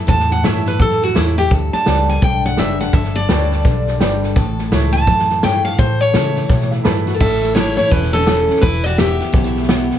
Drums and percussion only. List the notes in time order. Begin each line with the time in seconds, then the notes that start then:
0.08 kick, snare
0.19 snare
0.31 snare
0.44 snare, hi-hat pedal
0.66 snare
0.80 kick, snare
0.91 snare
1.02 snare
1.16 snare, hi-hat pedal
1.38 snare
1.51 kick, snare
1.73 snare
1.86 snare, hi-hat pedal
2.09 snare
2.22 kick, snare
2.44 snare
2.57 snare, hi-hat pedal
2.80 snare
2.93 kick, snare
3.04 snare
3.15 snare
3.29 snare, hi-hat pedal
3.51 snare
3.65 kick, snare
3.87 snare
4.00 snare, hi-hat pedal
4.23 snare
4.36 kick, snare
4.58 snare
4.72 snare, hi-hat pedal
4.94 snare
5.07 kick, snare
5.19 snare
5.29 snare
5.43 snare, hi-hat pedal
5.65 snare
5.78 kick, snare
6.01 snare
6.14 snare, hi-hat pedal
6.35 snare
6.49 kick, snare
6.61 snare
6.71 snare
6.85 snare, hi-hat pedal
7.07 snare
7.20 kick, snare, crash
7.43 snare
7.56 snare, hi-hat pedal
7.78 snare
7.91 kick, snare
8.03 snare
8.14 snare
8.20 snare
8.27 snare, hi-hat pedal
8.49 snare
8.56 snare
8.63 kick, snare
8.85 snare
8.98 snare, hi-hat pedal
9.20 snare
9.34 kick, snare
9.45 snare
9.55 snare
9.63 snare
9.69 snare, hi-hat pedal
9.91 snare